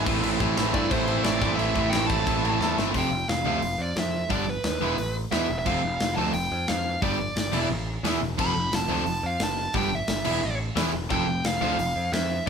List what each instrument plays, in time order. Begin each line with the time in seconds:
0.06 picked electric bass A1, distorted electric guitar A2 E3 A3 C4 E4, kick, crash
0.23 picked electric bass A1, distorted electric guitar A2 E3 A3 C4 E4, crash
0.40 picked electric bass A1, distorted electric guitar A2 E3 A3 C4 E4, kick, crash
0.57 picked electric bass A1, distorted electric guitar A2 E3 A3 C4 E4, snare, crash
0.74 picked electric bass G2, distorted electric guitar A2 E3 A3 C4 E4, lead electric guitar D5, kick, crash
0.91 picked electric bass A1, distorted electric guitar A2 E3 A3 C4 E4, lead electric guitar C5, kick, crash
1.08 distorted electric guitar A2 E3 A3 C4 E4, crash
1.24 picked electric bass A1, distorted electric guitar A2 E3 A3 C4 E4, lead electric guitar D5, snare, crash
1.41 picked electric bass A1, distorted electric guitar A2 E3 A3 C4 E4, kick, crash
1.56 picked electric bass A1, distorted electric guitar A3 C4 E4, lead electric guitar E5, crash
1.60 distorted electric guitar A2 E3
1.75 picked electric bass A1, distorted electric guitar A2 E3 A3 C4 E4, kick, crash
1.90 distorted electric guitar A2 E3 A3 C4 E4, lead electric guitar G5, snare, crash
1.94 picked electric bass A1
2.07 picked electric bass A1, distorted electric guitar A2 E3 A3 C4 E4, lead electric guitar A5, kick, crash
2.26 picked electric bass A1, distorted electric guitar A2 E3 A3 C4 E4, kick, crash
2.43 picked electric bass A1, distorted electric guitar A2 E3 A3 C4 E4, crash
2.60 picked electric bass E2, distorted electric guitar A2 E3 A3 C4 E4, snare
2.77 picked electric bass G1, distorted electric guitar A2 E3 A3 C4 E4, snare
2.93 picked electric bass F1, distorted electric guitar F2 C3 F3 A3 C4 F4, kick, open hi-hat
2.98 lead electric guitar G5
3.11 picked electric bass F1
3.28 picked electric bass F1, lead electric guitar F5, snare, open hi-hat
3.45 picked electric bass D2, distorted electric guitar F2 C3 F3 A3 C4 F4, lead electric guitar F5
3.62 picked electric bass F1, open hi-hat
3.78 picked electric bass F2, lead electric guitar D5
3.96 picked electric bass F2, lead electric guitar E5, snare, open hi-hat
4.29 picked electric bass G1, distorted electric guitar G2 D3 G3 B3 D4, lead electric guitar D5, kick, open hi-hat
4.49 lead electric guitar B4
4.64 picked electric bass D#2, snare, open hi-hat
4.80 picked electric bass E1, overdriven electric guitar E2 B2, distorted electric guitar E3 G#3 B3 E4
4.98 picked electric bass A1, open hi-hat
5.31 overdriven electric guitar E2 B2, picked electric bass E2, distorted electric guitar E3 G#3 B3 E4, lead electric guitar E5, snare, open hi-hat
5.49 picked electric bass E1
5.59 lead electric guitar E5
5.66 picked electric bass F1, overdriven electric guitar F2 C3, distorted electric guitar F3 A3 C4 F4, lead electric guitar F5, kick, crash
5.84 picked electric bass F1
6.00 picked electric bass F1, snare, open hi-hat
6.16 picked electric bass D2, overdriven electric guitar F2 C3, distorted electric guitar F3 A3 C4 F4, lead electric guitar A5
6.33 picked electric bass F1, lead electric guitar G5, open hi-hat
6.52 picked electric bass F2
6.68 picked electric bass F2, lead electric guitar F5, snare, open hi-hat
7.02 picked electric bass G1, overdriven electric guitar G2 D3, distorted electric guitar G3 B3 D4 G4, lead electric guitar D5, kick, open hi-hat
7.36 picked electric bass G1, snare, open hi-hat
7.52 picked electric bass E1, overdriven electric guitar E2 B2, distorted electric guitar E3 B3 E4 G#4, crash
7.71 picked electric bass A1
8.03 picked electric bass E2, overdriven electric guitar E2 B2, distorted electric guitar E3 B3 E4 G#4, snare, open hi-hat
8.21 picked electric bass E1
8.38 picked electric bass F1, overdriven electric guitar F2 C3, distorted electric guitar F3 C4 F4 A4, lead electric guitar B5, kick, crash
8.56 picked electric bass F1
8.72 picked electric bass F1, lead electric guitar A5, snare, open hi-hat
8.88 picked electric bass D2, overdriven electric guitar F2 C3, distorted electric guitar F3 C4 F4 A4, lead electric guitar A5
9.06 picked electric bass F1, open hi-hat
9.23 picked electric bass F2, lead electric guitar F5
9.40 picked electric bass F#1, lead electric guitar A5, snare, open hi-hat
9.73 picked electric bass G1, overdriven electric guitar G2 D3, distorted electric guitar G3 B3 D4 G4, lead electric guitar G5, kick, open hi-hat
9.95 lead electric guitar E5
10.08 picked electric bass G1, snare, open hi-hat
10.25 picked electric bass E1, overdriven electric guitar E2 B2, distorted electric guitar E3 B3 E4 G#4, crash
10.42 picked electric bass A1
10.76 overdriven electric guitar E2 B2, picked electric bass E2, distorted electric guitar E3 B3 E4 G#4, snare, open hi-hat
10.93 picked electric bass E1
11.10 picked electric bass F1, overdriven electric guitar F2 C3, distorted electric guitar F3 C4 F4 A4, lead electric guitar G5, kick, crash
11.27 picked electric bass F1
11.44 picked electric bass F1, lead electric guitar F5, snare, open hi-hat
11.61 picked electric bass D2, overdriven electric guitar F2 C3, distorted electric guitar F3 C4 F4 A4, lead electric guitar F5
11.79 picked electric bass F1, open hi-hat
11.96 picked electric bass F2
12.12 picked electric bass F2, lead electric guitar E5, snare, open hi-hat